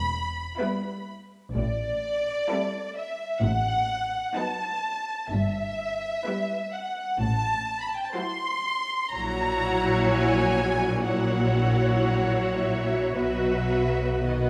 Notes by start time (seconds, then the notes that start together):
Already playing: E1 E2 B5
0.59 G3 B3 E4 B4
1.55 A1 A2 D5
2.48 E4 A4
2.53 G3 C4
2.97 E5
3.41 A1 A2 F#5
4.35 F#3 B3 D#4 B4 A5
5.31 G1 G2 E5
6.25 G3 B3 E4 B4
6.73 F#5
7.20 A1 A2 A5
7.81 B5
7.87 A5
7.96 G5
8.05 A5
8.14 F#3 E4 F#4 C5 C6
9.12 A#1 A#2 F#3 E4 F#4 C#5 A#5
10.09 G#5
11.04 F#3 E4 F#4 C#5 F#5
12.61 E5
13.15 B1 B2 F#3 F#4 B4 E5
14.25 D#3 F#4 B4 D#5